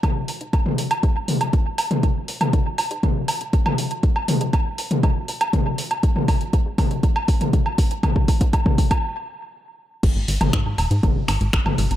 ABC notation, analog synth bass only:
X:1
M:4/4
L:1/16
Q:1/4=120
K:G#m
V:1 name="Analog synth bass" clef=bass
G,,, G,,, G,,, G,, G,,, z G,,, G,,, G,, z G,,, G,,, z G,,, D,,, G,, | G,,, G,,, G,,, G,,, G,, G,, G,,, G,, G,,, G,,, G,,, G,,, G,,, z G,,, G,,, | z G,,, G,,, G,, G,,, G,,, G,,, G,,, G,, G,,, G,,, G,,, B,,, B,,, B,,, B,,, | G,,, G,,, z G,,, G,, G,, G,,, G,, G,,, G,,, z G,,, G,,, G,,, G,,, G,,, |
G,,, z G,,, G,, G,,, G,,, G,,, G,,, z8 | G,,, G,,, G,,, G,,, G,, G,, D,,, G,, G,,, G,,, G,,, G,,, G,,, G,,, G,,, G,,, |]